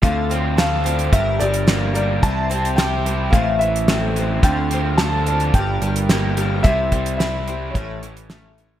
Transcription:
<<
  \new Staff \with { instrumentName = "Grand piano" } { \time 4/4 \key d \minor \tempo 4 = 109 f''4 f''4 e''8 d''4 d''8 | a''4 g''4 f''8 e''4 r8 | g''4 a''4 g''4. r8 | e''4 e''4 cis''4. r8 | }
  \new Staff \with { instrumentName = "Twelve-string acoustic guitar" } { \time 4/4 \key d \minor <d a c' f' c''>8 <c' f' c''>8 <a c' f' c''>8 <c' f' c''>8 <g d' g' bes'>8 <d' g' bes'>8 <g d' g' bes'>8 <d' g' bes'>8 | <c e g c' e' c''>8 <g c' e' c''>8 <g c' e' c''>8 <g c' e' c''>8 <a, e a c' e' c''>8 <a c' e' c''>8 <a c' e' c''>8 <a c' e' c''>8 | <d a c' f' c''>8 <c' f' c''>8 <a c' f' c''>8 <c' f' c''>8 <g d' g' bes'>8 <d' g' bes'>8 <g d' g' bes'>8 <d' g' bes'>8 | <c e g c' e' c''>8 <g c' e' c''>8 <g c' e' c''>8 <g c' e' c''>8 <a, e a cis' e' cis''>8 <a cis' e' cis''>8 <a cis' e' cis''>8 <a cis' e' cis''>8 | }
  \new Staff \with { instrumentName = "Overdriven electric guitar" } { \clef bass \time 4/4 \key d \minor d8 c'8 a'8 d'8 g,8 g8 bes8 g8 | c8 c'8 g'8 e'8 a,8 e8 c'8 e8 | d8 c'8 a'8 d'8 g,8 g8 bes8 g8 | c8 g8 e'8 c'8 a,8 e8 a8 e8 | }
  \new Staff \with { instrumentName = "Picked electric bass" } { \clef bass \time 4/4 \key d \minor d,2 g,,8 g,,4. | c,2 a,,2 | d,2 g,,8 g,,4. | c,2 a,,2 | }
  \new DrumStaff \with { instrumentName = "Drums" } \drummode { \time 4/4 <hh bd>8 hh8 <hh sn>8 hh16 hh16 <hh bd>8 hh16 hh16 <hh sn>8 hh8 | <hh bd>8 hh16 hh16 <hh sn>8 hh8 <hh bd>8 hh16 hh16 <hh sn>8 hh8 | <hh bd>8 hh8 <hh sn>8 hh16 hh16 <hh bd>8 hh16 hh16 <hh sn>8 hh8 | <hh bd>8 <hh bd>16 hh16 <hh sn>8 hh8 <hh bd>8 hh16 hh16 <hh sn>8 hh8 | }
>>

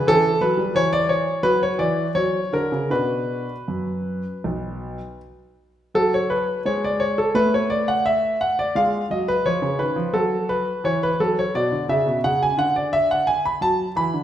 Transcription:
<<
  \new Staff \with { instrumentName = "Grand piano" } { \time 4/4 \key b \minor \tempo 4 = 86 << { a'8 b'8 cis''16 d''16 cis''8 b'16 cis''16 d''8 cis''8 ais'8 | b'2.~ b'8 r8 | \key fis \minor a'16 cis''16 b'8 cis''16 d''16 cis''16 a'16 b'16 cis''16 d''16 fis''16 e''8 fis''16 d''16 | eis''8 dis''16 b'16 cis''8 b'8 a'8 b'8 cis''16 b'16 a'16 cis''16 |
d''8 e''8 fis''16 gis''16 fis''16 d''16 e''16 fis''16 gis''16 b''16 a''8 b''8 | } \\ { r2 fis'4 r4 | r1 | fis'1 | eis'2 fis'2 |
fis'1 | } >> }
  \new Staff \with { instrumentName = "Grand piano" } { \clef bass \time 4/4 \key b \minor e8 fis16 g16 e4 fis8 e8 fis8 d16 cis16 | <b, d' fis'>4 fis,4 b,,4 r4 | \key fis \minor fis4 gis4 a2 | gis8 fis8 eis16 cis16 dis16 eis16 fis4 e8 fis8 |
b,16 d16 cis16 b,16 cis8 d4. fis8 e16 d16 | }
>>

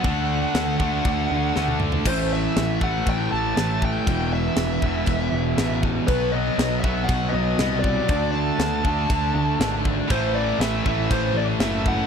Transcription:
<<
  \new Staff \with { instrumentName = "Lead electric guitar" } { \time 4/4 \key a \dorian \tempo 4 = 119 fis''2.~ fis''8 r8 | c''8 e''4 fis''8 g''8 a''4 g''8~ | g''8 e''2. r8 | b'8 dis''4 e''8 fis''8 dis''4 d''8~ |
d''8 a''2. r8 | c''8 d''8 e''8 e''8 c''8 d''8 e''8 fis''8 | }
  \new Staff \with { instrumentName = "Distorted electric guitar" } { \clef bass \time 4/4 \key a \dorian <d a d'>4. <d a d'>2~ <d a d'>8 | r1 | r1 | r1 |
r1 | <a, e a>4. <a, e a>2~ <a, e a>8 | }
  \new Staff \with { instrumentName = "Distorted electric guitar" } { \clef bass \time 4/4 \key a \dorian <d a d'>4. <d a d'>4. <d a d'>4 | <a, e a>4. <a, e a>4. <a, e a>4 | <e, b, e>4. <e, b, e>4. <e, b, e>4 | <b, fis b>4. <b, fis b>4. <b, fis b>4 |
<d a d'>4. <d a d'>4. <d a d'>4 | <a, e a>4. <a, e a>4. <a, e a>4 | }
  \new Staff \with { instrumentName = "Distorted electric guitar" } { \clef bass \time 4/4 \key a \dorian <d a d'>4. <d a d'>4. <d a d'>4 | <a, e a>4. <a, e a>4. <a, e a>4 | <e, b, e>4. <e, b, e>4. <e, b, e>4 | <b, fis b>4. <b, fis b>4. <b, fis b>4 |
<d a d'>4. <d a d'>4. <d a d'>4 | <a, e a>4. <a, e a>4. <a, e a>4 | }
  \new Staff \with { instrumentName = "Picked electric bass" } { \clef bass \time 4/4 \key a \dorian d,4 d,8 d,8 d,8 d,8 d,4 | a,,4 a,,8 a,,8 a,,8 a,,8 a,,4 | e,,4 e,,8 e,,8 e,,8 e,,8 a,,4 | b,,4 b,,8 b,,8 b,,8 b,,8 c,4 |
d,4 d,8 d,8 d,8 d,8 gis,,4 | a,,4 a,,8 a,,8 a,,8 a,,8 fis,,4 | }
  \new DrumStaff \with { instrumentName = "Drums" } \drummode { \time 4/4 <cymc bd>4 <cymc sn>8 bd8 <cymc bd>4 sn16 tommh16 toml16 tomfh16 | <cymc bd>4 <cymc sn>8 bd8 <cymc bd>4 <cymc sn>8 bd8 | <cymc bd>4 <cymc sn>8 bd8 <cymc bd>4 <cymc sn>8 bd8 | <cymc bd>4 <cymc sn>8 bd8 <cymc bd>4 <cymc sn>8 bd8 |
<cymc bd>4 <cymc sn>8 bd8 <cymc bd>4 <cymc sn>8 bd8 | <cymc bd>4 <cymc sn>8 bd8 <cymc bd>4 <cymc sn>8 bd8 | }
>>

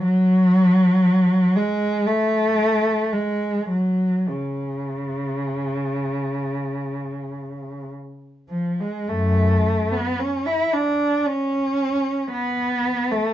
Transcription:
\new Staff \with { instrumentName = "Cello" } { \time 4/4 \key cis \phrygian \tempo 4 = 55 fis4. gis8 a4 gis8 fis8 | cis2. r8 eis16 gis16 | <fis, a>8. b16 cis'16 e'16 d'8 cis'4 b8. a16 | }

